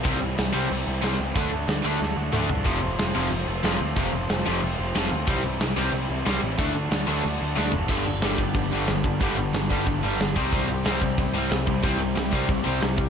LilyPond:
<<
  \new Staff \with { instrumentName = "Overdriven electric guitar" } { \time 4/4 \key g \major \tempo 4 = 183 <c e g c' e'>8 <c e g c' e'>8 <c e g c' e'>8 <c e g c' e'>8 <c e g c' e'>8 <c e g c' e'>8 <c e g c' e'>8 <c e g c' e'>8 | <d a d' fis'>8 <d a d' fis'>8 <d a d' fis'>8 <d a d' fis'>8 <d a d' fis'>8 <d a d' fis'>8 <d a d' fis'>8 <d a d' fis'>8 | <f a c' f'>8 <f a c' f'>8 <f a c' f'>8 <f a c' f'>8 <f a c' f'>8 <f a c' f'>8 <f a c' f'>8 <f a c' f'>8 | <f a c' f'>8 <f a c' f'>8 <f a c' f'>8 <f a c' f'>8 <f a c' f'>8 <f a c' f'>8 <f a c' f'>8 <f a c' f'>8 |
<c e g c' e'>8 <c e g c' e'>8 <c e g c' e'>8 <c e g c' e'>8 <c e g c' e'>8 <c e g c' e'>8 <c e g c' e'>8 <c e g c' e'>8 | <d a d' fis'>8 <d a d' fis'>8 <d a d' fis'>8 <d a d' fis'>8 <d a d' fis'>8 <d a d' fis'>8 <d a d' fis'>8 <d a d' fis'>8 | <g, d g b d' g'>4. <g, d g b d' g'>2~ <g, d g b d' g'>8 | <g, d g b d' g'>4. <g, d g b d' g'>2 <c g c' e' g'>8~ |
<c g c' e' g'>4 <c g c' e' g'>2~ <c g c' e' g'>8 <c g c' e' g'>8~ | <c g c' e' g'>4 <c g c' e' g'>2~ <c g c' e' g'>8 r8 | }
  \new Staff \with { instrumentName = "Overdriven electric guitar" } { \clef bass \time 4/4 \key g \major <c g c'>8 r4 <c g c'>8 r4 <c g c'>8 r8 | <d a d'>8 r4 <d a d'>8 r4 <d a d'>8 r8 | <f, c f>8 r4 <f, c f>8 r4 <f, c f>8 r8 | <f, c f>8 r4 <f, c f>8 r4 <f, c f>8 r8 |
<c g c'>8 r4 <c g c'>8 r4 <c g c'>8 r8 | <d a d'>8 r4 <d a d'>8 r4 <d a d'>8 r8 | <g, d g>8 <g, d>8 <g, d g>8 <g, d>8 <g, d>8 <g, d g>8 <g, d>8 <g, d>8 | <g, d g>8 <g, d>8 <g, d>8 <g, d g>8 <g, d>8 <g, d g>8 <g, d>8 <c g c'>8 |
<c g c'>8 <c g>8 <c g c'>8 <c g>8 <c g>8 <c g c'>8 <c g>8 <c g>8 | <c g c'>8 <c g>8 <c g>8 <c g c'>8 <c g>8 <c g c'>8 <c g>8 <c g>8 | }
  \new Staff \with { instrumentName = "Overdriven electric guitar" } { \clef bass \time 4/4 \key g \major <c g c'>8 r4 <c g c'>8 r4 <c g c'>8 r8 | <d a d'>8 r4 <d a d'>8 r4 <d a d'>8 r8 | <f, c f>8 r4 <f, c f>8 r4 <f, c f>8 r8 | <f, c f>8 r4 <f, c f>8 r4 <f, c f>8 r8 |
<c g c'>8 r4 <c g c'>8 r4 <c g c'>8 r8 | <d a d'>8 r4 <d a d'>8 r4 <d a d'>8 r8 | <g, d g>8 <g, d>8 <g, d g>8 <g, d>8 <g, d>8 <g, d g>8 <g, d>8 <g, d>8 | <g, d g>8 <g, d>8 <g, d>8 <g, d g>8 <g, d>8 <g, d g>8 <g, d>8 <c g c'>8 |
<c g c'>8 <c g>8 <c g c'>8 <c g>8 <c g>8 <c g c'>8 <c g>8 <c g>8 | <c g c'>8 <c g>8 <c g>8 <c g c'>8 <c g>8 <c g c'>8 <c g>8 <c g>8 | }
  \new Staff \with { instrumentName = "Picked electric bass" } { \clef bass \time 4/4 \key g \major c,8 c,8 c,8 c,8 c,8 c,8 c,8 cis,8 | d,8 d,8 d,8 d,8 d,8 d,8 d,8 c,8 | f,,8 f,,8 f,,8 f,,8 f,,8 f,,8 f,,8 d,8 | f,,8 f,,8 f,,8 f,,8 f,,8 f,,8 f,,8 d,8 |
c,8 c,8 c,8 c,8 c,8 c,8 c,8 a,,8 | d,8 d,8 d,8 d,8 d,8 d,8 d,8 fis,,8 | g,,8 g,,8 g,,8 g,,8 g,,8 g,,8 g,,8 g,,8 | g,,8 g,,8 g,,8 g,,8 g,,8 g,,8 g,,8 c,8 |
c,8 c,8 c,8 c,8 c,8 c,8 c,8 c,8 | c,8 c,8 c,8 c,8 c,8 c,8 c,8 c,8 | }
  \new DrumStaff \with { instrumentName = "Drums" } \drummode { \time 4/4 <cymc bd>4 <cymc sn>4 cymc4 <cymc sn>4 | <cymc bd>4 <cymc sn>4 sn4 toml8 tomfh8 | <cymc bd>4 <cymc sn>4 cymc4 <cymc sn>4 | <cymc bd>4 <cymc sn>4 cymc4 <cymc sn>4 |
<cymc bd>4 <cymc sn>4 cymc4 <cymc sn>4 | <cymc bd>4 <cymc sn>4 cymc4 sn8 tomfh8 | <cymc bd>4 <hho sn>8 bd8 <hho bd>4 <hho sn>8 bd8 | <hho bd>4 <hho sn>8 bd8 <hho bd>4 <hho sn>8 bd8 |
<hho bd>4 <hho sn>8 bd8 <hho bd>4 <hho sn>8 bd8 | <hho bd>4 <hho sn>8 bd8 <hho bd>4 <hho sn>8 bd8 | }
>>